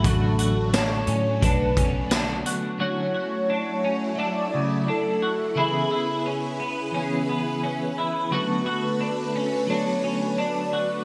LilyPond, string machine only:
\new Staff \with { instrumentName = "String machine" } { \time 4/4 \key d \lydian \tempo 4 = 87 << { <fis a>2 b2 | <fis a e' fis'>1 | <cis gis' b'>1 | <d a fis' b'>1 | } \\ { d1 | r1 | r1 | r1 | } >> }